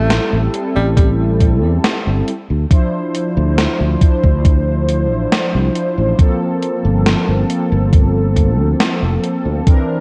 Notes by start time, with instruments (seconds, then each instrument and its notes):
Already playing: fretless electric bass A1, analog polysynth G3 C4 E4 A4, tenor saxophone A3
0.10 snare, closed hi-hat
0.33 fretless electric bass A1
0.52 analog polysynth G3 C4 E4 A4, closed hi-hat
0.76 fretless electric bass A1, tenor saxophone G3
0.96 tenor saxophone G3, kick, closed hi-hat
1.40 kick, closed hi-hat
1.63 fretless electric bass E2
1.84 snare, closed hi-hat
2.07 fretless electric bass G1
2.28 closed hi-hat
2.50 fretless electric bass D2
2.69 analog polysynth F3 D4 E4 C5, kick, closed hi-hat
3.15 closed hi-hat
3.37 fretless electric bass D2
3.58 snare, closed hi-hat
3.80 fretless electric bass D2
4.00 analog polysynth F3 D4 E4 C5, kick, closed hi-hat
4.24 fretless electric bass D2, kick
4.45 kick, closed hi-hat
4.89 closed hi-hat
5.11 fretless electric bass A1
5.32 snare, closed hi-hat
5.54 fretless electric bass C2
5.75 closed hi-hat
5.98 fretless electric bass A1
6.17 analog polysynth F3 A#3 C4 A4, kick, closed hi-hat
6.63 closed hi-hat
6.85 fretless electric bass G1
7.06 snare, closed hi-hat
7.28 fretless electric bass G1
7.48 analog polysynth F3 A#3 C4 A4, closed hi-hat
7.72 fretless electric bass G1
7.93 kick, closed hi-hat
8.36 kick, closed hi-hat
8.59 fretless electric bass D2
8.80 snare, closed hi-hat
9.02 fretless electric bass F1
9.24 closed hi-hat
9.45 fretless electric bass D2
9.66 analog polysynth E3 C4 D4 A#4, kick, closed hi-hat